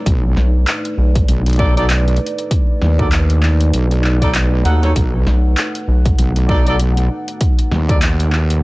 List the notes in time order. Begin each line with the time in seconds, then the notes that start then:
Already playing: A3 D#4 B4
0.06 B1 D5, kick, closed hi-hat
0.37 B1, snare
0.67 clap, closed hi-hat
0.85 closed hi-hat
0.98 B1
1.16 kick, closed hi-hat
1.29 B1, closed hi-hat
1.46 closed hi-hat
1.50 closed hi-hat
1.53 closed hi-hat
1.56 D#4 F#4 A4 D5, kick, closed hi-hat
1.77 D#4 F#4 A4 D5, closed hi-hat
1.90 clap, closed hi-hat
2.08 closed hi-hat
2.16 closed hi-hat
2.26 closed hi-hat
2.38 closed hi-hat
2.51 kick, closed hi-hat
2.82 D#2, snare
2.99 D#4 F#4 A4 D5, kick
3.12 clap, closed hi-hat
3.30 closed hi-hat
3.43 clap
3.61 closed hi-hat
3.73 B1, closed hi-hat
3.91 closed hi-hat
4.04 clap
4.22 D#4 F#4 A4 D5, kick, closed hi-hat
4.35 clap, closed hi-hat
4.65 D#2 D#4 F#4 A4 F#5, closed hi-hat
4.83 D#4 F#4 A4 C#5, snare, closed hi-hat
4.96 B1 F#5, kick, closed hi-hat
5.27 B1, snare
5.57 clap, closed hi-hat
5.75 closed hi-hat
5.88 B1
6.05 kick, closed hi-hat
6.19 B1, closed hi-hat
6.36 closed hi-hat
6.49 D#4 F#4 A4 D5, kick
6.67 D#4 F#4 A4 D5, closed hi-hat
6.80 closed hi-hat
6.97 closed hi-hat
7.28 closed hi-hat
7.41 kick, closed hi-hat
7.59 closed hi-hat
7.71 D#2, snare
7.89 D#4 F#4 A4 D5, kick, closed hi-hat
8.02 clap, closed hi-hat
8.20 closed hi-hat
8.33 clap
8.50 closed hi-hat